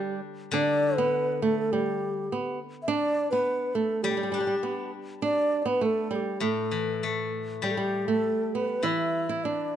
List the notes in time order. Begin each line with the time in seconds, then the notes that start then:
Already playing: G3 D4 G4
0.51 D3 D4 D5
0.97 B3 B4
1.42 A3 A4
1.73 G3 G4
2.32 B3
2.82 E5
2.88 D4 D5
3.31 B3 B4
3.75 A3 A4
4.03 G3 G4
4.11 G3
4.17 G3
4.23 G3
4.32 G3 D4
4.40 G3
4.47 G3
4.63 B3
5.22 D4 D5
5.62 B3 D5
5.68 B4
5.81 A3
5.86 A4
6.11 G3
6.15 G4
6.40 A2 A3
6.46 A4
6.71 E3
7.03 A3
7.62 G3 G4
7.71 A4
7.77 G3 G4
8.08 A3 A4
8.55 B3 B4
8.83 E3 E4 E5
9.29 E4
9.44 D4 D5